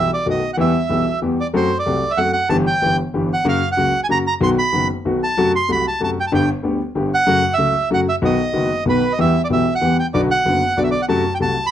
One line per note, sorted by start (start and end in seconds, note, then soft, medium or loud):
0.00 0.11 E5 medium
0.14 0.27 D5 medium
0.26 0.40 B1 soft
0.26 0.40 B2 soft
0.26 0.40 D#3 soft
0.26 0.40 A3 soft
0.26 0.40 B3 soft
0.26 0.40 F#4 soft
0.30 0.51 D#5 medium
0.54 0.71 E2 medium
0.54 0.71 E3 medium
0.54 0.71 G3 medium
0.54 0.71 B3 medium
0.54 0.56 F#5 medium
0.58 0.71 G4 medium
0.58 1.20 E5 medium
0.89 1.04 B1 soft
0.89 1.04 B2 soft
0.89 1.03 E3 soft
0.89 1.04 G3 soft
0.89 1.04 B3 soft
0.89 1.04 G4 soft
1.22 1.36 E2 soft
1.22 1.36 E3 soft
1.22 1.36 G3 soft
1.22 1.36 B3 soft
1.22 1.36 G4 soft
1.40 1.47 D5 medium
1.54 1.68 F#2 medium
1.54 1.68 F#3 medium
1.54 1.68 A3 medium
1.54 1.68 C4 medium
1.54 1.68 A4 medium
1.54 1.78 C5 medium
1.79 2.12 D5 medium
1.86 2.00 C2 medium
1.86 2.00 C3 medium
1.86 2.00 F#3 soft
1.86 2.00 A3 soft
1.86 2.00 C4 soft
1.86 2.00 A4 soft
2.11 2.19 E5 medium
2.17 2.32 F#2 soft
2.17 2.32 F#3 medium
2.17 2.32 A3 soft
2.17 2.32 C4 soft
2.17 2.32 A4 medium
2.17 2.31 F#5 medium
2.33 2.49 F#5 medium
2.49 2.64 G1 medium
2.49 2.64 G2 medium
2.49 2.63 E3 medium
2.49 2.64 G3 medium
2.49 2.64 B3 medium
2.49 2.64 G4 medium
2.49 2.57 A5 medium
2.67 2.97 G5 medium
2.82 2.96 G1 medium
2.82 2.96 G2 medium
2.82 2.96 E3 soft
2.82 2.96 G3 soft
2.82 2.96 B3 soft
2.82 2.96 G4 medium
3.14 3.28 G1 soft
3.14 3.28 G2 medium
3.14 3.28 E3 soft
3.14 3.28 G3 soft
3.14 3.28 B3 soft
3.14 3.28 G4 soft
3.34 3.47 F#5 medium
3.44 3.59 F#2 medium
3.44 3.58 C#3 medium
3.44 3.59 F#3 medium
3.44 3.59 A#3 medium
3.44 3.59 F#4 medium
3.48 3.69 F5 medium
3.72 4.01 F#5 medium
3.77 3.91 C#2 medium
3.77 3.91 C#3 medium
3.77 3.91 F#3 soft
3.77 3.91 A#3 soft
3.77 3.91 F#4 medium
4.04 4.07 G#5 medium
4.09 4.23 F#2 soft
4.09 4.23 C#3 soft
4.09 4.23 F#3 soft
4.09 4.23 A#3 soft
4.09 4.23 F#4 soft
4.09 4.18 A#5 medium
4.27 4.34 A#5 medium
4.40 4.54 B1 medium
4.40 4.54 B2 medium
4.40 4.54 D#3 medium
4.40 4.54 F#3 medium
4.40 4.54 B3 medium
4.40 4.54 F#4 medium
4.40 4.50 C6 medium
4.59 4.88 B5 medium
4.73 4.86 F#1 medium
4.73 4.86 F#2 medium
4.73 4.86 D#3 soft
4.73 4.86 F#3 soft
4.73 4.87 B3 soft
4.73 4.86 F#4 medium
5.05 5.19 B1 medium
5.05 5.19 B2 medium
5.05 5.18 D#3 soft
5.05 5.19 F#3 soft
5.05 5.19 B3 soft
5.05 5.19 F#4 soft
5.24 5.52 A5 medium
5.37 5.51 F#2 medium
5.37 5.51 C3 medium
5.37 5.51 F#3 medium
5.37 5.51 A3 medium
5.37 5.51 F#4 medium
5.56 5.71 C6 medium
5.68 5.83 C2 medium
5.68 5.82 C3 soft
5.68 5.83 F#3 soft
5.68 5.83 A3 soft
5.68 5.83 F#4 medium
5.72 5.86 B5 medium
5.88 6.01 A5 medium
6.00 6.14 F#2 medium
6.00 6.14 C3 soft
6.00 6.14 F#3 soft
6.00 6.14 A3 soft
6.00 6.15 F#4 soft
6.00 6.10 A5 medium
6.20 6.25 G5 medium
6.27 6.32 A5 medium
6.32 6.46 G1 medium
6.32 6.46 G2 medium
6.32 6.46 D3 medium
6.32 6.46 G3 medium
6.32 6.46 B3 medium
6.32 6.46 G4 medium
6.32 6.49 G5 medium
6.63 6.77 D2 soft
6.63 6.77 D3 medium
6.63 6.77 G3 soft
6.63 6.77 B3 soft
6.63 6.77 G4 soft
6.95 7.09 G1 medium
6.95 7.09 G2 medium
6.95 7.09 D3 soft
6.95 7.09 G3 soft
6.95 7.09 B3 soft
6.95 7.09 G4 medium
7.14 7.54 F#5 loud
7.27 7.41 F#2 medium
7.27 7.40 C#3 medium
7.27 7.41 F#3 medium
7.27 7.41 A3 medium
7.27 7.41 F#4 medium
7.53 7.89 E5 medium
7.58 7.72 C#2 medium
7.58 7.72 C#3 medium
7.58 7.72 F#3 soft
7.58 7.72 A3 soft
7.58 7.72 F#4 soft
7.90 8.04 F#2 medium
7.90 8.04 C#3 soft
7.90 8.04 F#3 medium
7.90 8.04 A3 soft
7.90 8.05 F#4 medium
7.90 8.00 F#5 medium
8.09 8.16 E5 medium
8.22 8.36 B1 medium
8.22 8.36 B2 medium
8.22 8.36 D#3 medium
8.22 8.36 F#3 medium
8.22 8.36 B3 medium
8.22 8.36 F#4 medium
8.22 8.84 D#5 medium
8.53 8.68 F#1 medium
8.53 8.68 F#2 soft
8.53 8.67 D#3 soft
8.53 8.67 F#3 soft
8.53 8.68 B3 soft
8.53 8.68 F#4 medium
8.85 9.00 B1 medium
8.85 9.00 B2 medium
8.85 9.00 D#3 soft
8.85 9.00 F#3 soft
8.85 9.00 B3 soft
8.85 9.00 F#4 soft
8.89 9.13 B4 medium
9.13 9.19 D#5 medium
9.19 9.32 E2 medium
9.19 9.32 E3 medium
9.19 9.32 G3 medium
9.19 9.32 B3 medium
9.19 9.33 G4 medium
9.19 9.42 E5 medium
9.44 9.48 D5 medium
9.50 9.64 B1 soft
9.50 9.64 B2 soft
9.50 9.64 E3 soft
9.50 9.64 G3 soft
9.50 9.64 B3 soft
9.50 9.64 G4 soft
9.50 9.74 E5 medium
9.75 9.97 F#5 medium
9.81 9.95 E2 soft
9.81 9.95 E3 soft
9.81 9.95 G3 soft
9.81 9.96 B3 soft
9.81 9.95 G4 soft
10.00 10.06 G5 medium
10.14 10.28 B1 medium
10.14 10.28 B2 medium
10.14 10.28 D3 medium
10.14 10.28 F#3 medium
10.14 10.28 B3 medium
10.14 10.28 F#4 medium
10.14 10.21 D5 medium
10.31 10.80 F#5 medium
10.45 10.59 F#1 medium
10.45 10.59 F#2 medium
10.45 10.59 D3 soft
10.45 10.59 F#3 soft
10.45 10.59 B3 soft
10.45 10.59 F#4 soft
10.77 10.91 B1 medium
10.77 10.91 B2 medium
10.77 10.91 D3 soft
10.77 10.91 F#3 soft
10.77 10.91 B3 soft
10.77 10.91 F#4 soft
10.77 10.83 D5 medium
10.84 10.90 E5 medium
10.91 11.02 D5 medium
11.02 11.06 F#5 medium
11.08 11.23 F#2 medium
11.08 11.22 C3 medium
11.08 11.23 F#3 medium
11.08 11.23 A3 medium
11.08 11.23 F#4 medium
11.08 11.34 A5 medium
11.35 11.38 G5 medium
11.40 11.54 C2 soft
11.40 11.54 C3 medium
11.40 11.54 F#3 soft
11.40 11.54 A3 soft
11.40 11.54 F#4 soft
11.40 11.66 A5 medium
11.66 11.71 B5 medium